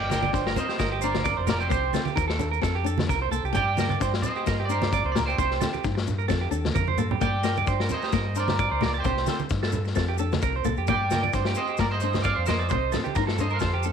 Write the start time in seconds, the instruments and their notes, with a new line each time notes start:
Already playing: fingered electric bass G1, clean electric guitar D5 G5
0.10 clean electric guitar A#4, muted nylon-string guitar stroke, snare, high conga, maracas
0.23 clean electric guitar D5, high conga, maracas
0.33 fingered electric bass G1, nylon-string guitar D4, clean electric guitar C5, kick, snare, maracas
0.46 clean electric guitar A#4, snare
0.56 nylon-string guitar C4, clean electric guitar C5 D#5, low conga, maracas
0.69 clean electric guitar G4, snare, maracas
0.78 fingered electric bass G1, nylon-string guitar A#3, clean electric guitar A#4, kick, snare, maracas
0.92 clean electric guitar G4
1.01 nylon-string guitar D4, clean electric guitar A#4 C5 D5, maracas
1.14 snare, high conga, maracas
1.24 nylon-string guitar C4, clean electric guitar D5, kick, snare, maracas
1.37 fingered electric bass F1, clean electric guitar C5
1.47 nylon-string guitar A#3, clean electric guitar A#4 D5, snare, low conga, maracas
1.59 clean electric guitar G4 C5 D5, maracas
1.69 fingered electric bass C2, nylon-string guitar C4, clean electric guitar C5, kick, low conga, maracas
1.93 nylon-string guitar C4, clean electric guitar A4, snare, high conga, maracas
2.05 clean electric guitar G4, high conga, maracas
2.15 fingered electric bass D#2, nylon-string guitar D#4, clean electric guitar A#4, kick, maracas
2.28 clean electric guitar A4, snare
2.39 nylon-string guitar D4, low conga, maracas
2.51 clean electric guitar A#4, maracas
2.61 fingered electric bass F2, nylon-string guitar C4, clean electric guitar A4, kick, snare, maracas
2.75 clean electric guitar G4
2.84 nylon-string guitar D4, clean electric guitar A4, maracas
2.98 snare, high conga, maracas
3.07 fingered electric bass C2, nylon-string guitar C4, clean electric guitar A#4, kick, snare, maracas
3.22 clean electric guitar C5
3.31 fingered electric bass C2, nylon-string guitar A#3, clean electric guitar A4, maracas
3.43 fingered electric bass C2, clean electric guitar G4, maracas
3.53 fingered electric bass G2, clean electric guitar D5 G5, muted nylon-string guitar stroke, kick, low conga, maracas
3.77 nylon-string guitar A#3, clean electric guitar A#4, snare, high conga, maracas
3.89 clean electric guitar D5, high conga, maracas
4.00 fingered electric bass G2, nylon-string guitar D4, clean electric guitar C5, kick, snare, maracas
4.14 snare
4.22 nylon-string guitar C4, clean electric guitar D#5, low conga, maracas
4.26 clean electric guitar C5
4.36 clean electric guitar G4, maracas
4.46 fingered electric bass G2, nylon-string guitar A#3, clean electric guitar A#4, kick, snare, maracas
4.60 clean electric guitar G4
4.65 clean electric guitar D5
4.69 nylon-string guitar D4, clean electric guitar A#4 C5, maracas
4.82 snare, high conga, maracas
4.92 nylon-string guitar C4, clean electric guitar D5, kick, snare, maracas
5.04 fingered electric bass C#2, clean electric guitar C5
5.12 clean electric guitar A#4 D5, snare
5.16 nylon-string guitar A#3, low conga, maracas
5.26 clean electric guitar G4 C5 D5, maracas
5.38 fingered electric bass C2, nylon-string guitar C4, clean electric guitar C5, kick, low conga, maracas
5.51 snare
5.61 nylon-string guitar C4, clean electric guitar A4, snare, high conga, low conga, maracas
5.73 clean electric guitar G4, high conga, maracas
5.84 fingered electric bass G2, nylon-string guitar D#4, kick, snare, maracas
5.95 muted clean electric guitar stroke, snare
6.07 nylon-string guitar D4, low conga, maracas
6.19 clean electric guitar A#4, maracas
6.28 fingered electric bass F2, nylon-string guitar C4, clean electric guitar A4, kick, snare, high conga, maracas
6.41 clean electric guitar G4
6.51 fingered electric bass D#2, nylon-string guitar D4, clean electric guitar A4, maracas
6.65 snare, high conga, maracas
6.74 fingered electric bass F2, nylon-string guitar C4, clean electric guitar A#4, kick, high conga, maracas
6.88 clean electric guitar C5, high conga
6.97 fingered electric bass G2, nylon-string guitar A#3, clean electric guitar A4, low conga, maracas
7.11 clean electric guitar G4, low conga
7.21 fingered electric bass G2, nylon-string guitar A#3, clean electric guitar D5 G5, kick, low conga, maracas
7.44 clean electric guitar A#4, muted nylon-string guitar stroke, snare, maracas
7.57 clean electric guitar D5, high conga, maracas
7.66 fingered electric bass G2, nylon-string guitar D4, clean electric guitar C5, kick, maracas
7.80 clean electric guitar A#4, snare
7.89 nylon-string guitar C4, clean electric guitar C5, low conga, maracas
7.94 clean electric guitar D#5
8.02 clean electric guitar G4, snare, maracas
8.12 fingered electric bass G2, nylon-string guitar A#3, clean electric guitar A#4, kick, snare, maracas
8.35 nylon-string guitar D4, clean electric guitar A#4 C5, maracas
8.40 clean electric guitar D5
8.48 snare, high conga, maracas
8.59 nylon-string guitar C4, clean electric guitar D5, kick, maracas
8.71 fingered electric bass C#2, clean electric guitar C5
8.81 nylon-string guitar A#3, clean electric guitar A#4, snare, low conga
8.86 clean electric guitar D5
8.94 clean electric guitar D5, maracas
8.98 clean electric guitar G4 C5
9.04 fingered electric bass C2, nylon-string guitar C4, clean electric guitar C5, kick, low conga, maracas
9.17 snare
9.26 nylon-string guitar C4, clean electric guitar A4, snare, high conga, maracas
9.39 muted clean electric guitar stroke, high conga, maracas
9.49 fingered electric bass G2, nylon-string guitar D#4, kick, snare, maracas
9.63 clean electric guitar A4, snare
9.72 nylon-string guitar D4, low conga, maracas
9.85 muted clean electric guitar stroke, snare, maracas
9.95 fingered electric bass F2, nylon-string guitar C4, clean electric guitar A4, kick, snare, maracas
10.09 clean electric guitar G4
10.18 nylon-string guitar D4, clean electric guitar A4, maracas
10.32 snare, high conga, maracas
10.42 fingered electric bass C2, nylon-string guitar C4, clean electric guitar A#4, kick, maracas
10.56 clean electric guitar C5
10.64 fingered electric bass C2, nylon-string guitar A#3, clean electric guitar A4, low conga, maracas
10.77 fingered electric bass F2, clean electric guitar G4, maracas
10.87 fingered electric bass G2, nylon-string guitar A#3, clean electric guitar D5 G5, kick, low conga, maracas
11.11 nylon-string guitar A#3, clean electric guitar A#4, snare, high conga, maracas
11.23 clean electric guitar D5, high conga, maracas
11.33 fingered electric bass G2, nylon-string guitar D4, clean electric guitar C5, kick, snare, maracas
11.45 clean electric guitar G4, snare
11.55 nylon-string guitar C4, clean electric guitar C5 D#5, maracas
11.68 clean electric guitar G4, maracas
11.77 fingered electric bass G2, nylon-string guitar A#3, clean electric guitar A#4 D5, kick, snare, maracas
11.91 clean electric guitar C5 D#5
12.00 nylon-string guitar D4, clean electric guitar C5, maracas
12.13 snare, high conga, maracas
12.22 nylon-string guitar C4, clean electric guitar D5 F5, kick, maracas
12.36 fingered electric bass F2, clean electric guitar C5
12.46 nylon-string guitar A#3, clean electric guitar A#4 C5 D#5, snare, low conga, maracas
12.59 clean electric guitar D5, maracas
12.69 fingered electric bass C2, nylon-string guitar C4, clean electric guitar C5, kick, low conga, maracas
12.92 nylon-string guitar C4, clean electric guitar A4, snare, high conga, low conga, maracas
13.04 clean electric guitar G4, high conga, maracas
13.15 fingered electric bass G2, nylon-string guitar D#4, clean electric guitar A#4, kick, snare, maracas
13.27 clean electric guitar A4, snare
13.38 nylon-string guitar D4, clean electric guitar C5 D#5, low conga, maracas
13.50 clean electric guitar A#4 C5, maracas
13.55 clean electric guitar F5
13.60 fingered electric bass F2, clean electric guitar A4, muted nylon-string guitar stroke, kick, snare, high conga, maracas
13.74 clean electric guitar G4
13.83 nylon-string guitar D4, clean electric guitar A4, maracas